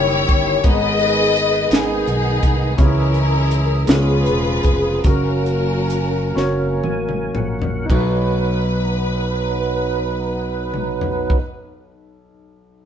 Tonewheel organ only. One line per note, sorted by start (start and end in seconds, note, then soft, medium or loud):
0.00 0.63 D#3 soft
0.00 0.64 C#4 soft
0.00 0.64 E4 soft
0.00 0.67 G4 medium
0.64 2.74 D#3 medium
0.64 2.74 G#3 medium
0.64 2.74 B3 medium
0.64 2.74 G#4 medium
2.79 3.88 E3 medium
2.79 3.88 G#3 medium
2.79 3.87 C#4 medium
2.79 2.85 G4 medium
2.85 3.91 G#4 medium
3.88 5.05 F3 soft
3.88 5.05 B3 soft
3.88 5.03 C#4 soft
3.88 3.95 G4 soft
3.95 5.08 G#4 medium
5.04 7.86 F#3 medium
5.04 7.86 A#3 medium
5.04 7.85 C#4 medium
5.04 7.85 A#4 medium
6.84 7.31 G#5 medium
7.35 7.86 F#5 soft
7.90 11.39 F#3 medium
7.90 11.38 B3 medium
7.90 11.38 D#4 medium
7.90 11.38 B4 medium